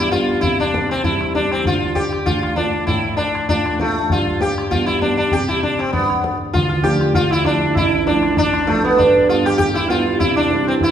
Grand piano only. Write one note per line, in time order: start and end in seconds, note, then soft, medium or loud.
0.00 0.40 G2 medium
0.00 0.10 G3 soft
0.00 0.11 B3 soft
0.00 0.11 D4 medium
0.12 0.42 G3 soft
0.12 0.43 B3 soft
0.12 0.43 D4 soft
0.44 1.62 C3 medium
1.04 1.33 G3 soft
1.04 1.33 C4 soft
1.04 1.34 E4 soft
1.34 1.65 G3 soft
1.34 1.65 C4 soft
1.34 1.65 E4 soft
1.64 2.83 D3 medium
2.26 2.56 A3 soft
2.26 2.56 D4 soft
2.26 2.56 F4 soft
2.57 2.87 A3 soft
2.57 2.87 D4 soft
2.57 2.87 F4 soft
2.88 4.07 A2 medium
3.49 3.79 A3 soft
3.49 3.79 D4 soft
3.49 3.79 F4 soft
3.80 4.10 A3 soft
3.80 4.10 D4 soft
3.80 4.10 F4 soft
4.11 5.29 G2 medium
4.70 5.00 G3 soft
4.70 5.01 B3 soft
4.70 5.01 D4 soft
5.02 5.32 G3 soft
5.02 5.32 B3 soft
5.02 5.32 D4 soft
5.32 5.92 C3 medium
5.93 6.53 G2 soft
6.55 7.73 D2 medium
6.85 7.15 F3 soft
6.85 7.15 A3 soft
6.85 7.15 D4 medium
7.45 7.75 F3 soft
7.45 7.76 A3 soft
7.45 7.76 D4 soft
7.76 8.95 A1 medium
8.07 8.37 F3 soft
8.07 8.37 A3 soft
8.07 8.37 D4 medium
8.68 8.98 F3 soft
8.68 8.98 A3 soft
8.68 8.98 D4 soft
8.99 10.17 G2 medium
9.29 9.59 G3 soft
9.29 9.59 B3 soft
9.29 9.59 D4 soft
9.89 10.19 G3 soft
9.89 10.19 B3 soft
9.89 10.20 D4 soft
10.20 10.91 C3 medium
10.51 10.81 G3 soft
10.51 10.81 C4 soft
10.51 10.81 E4 medium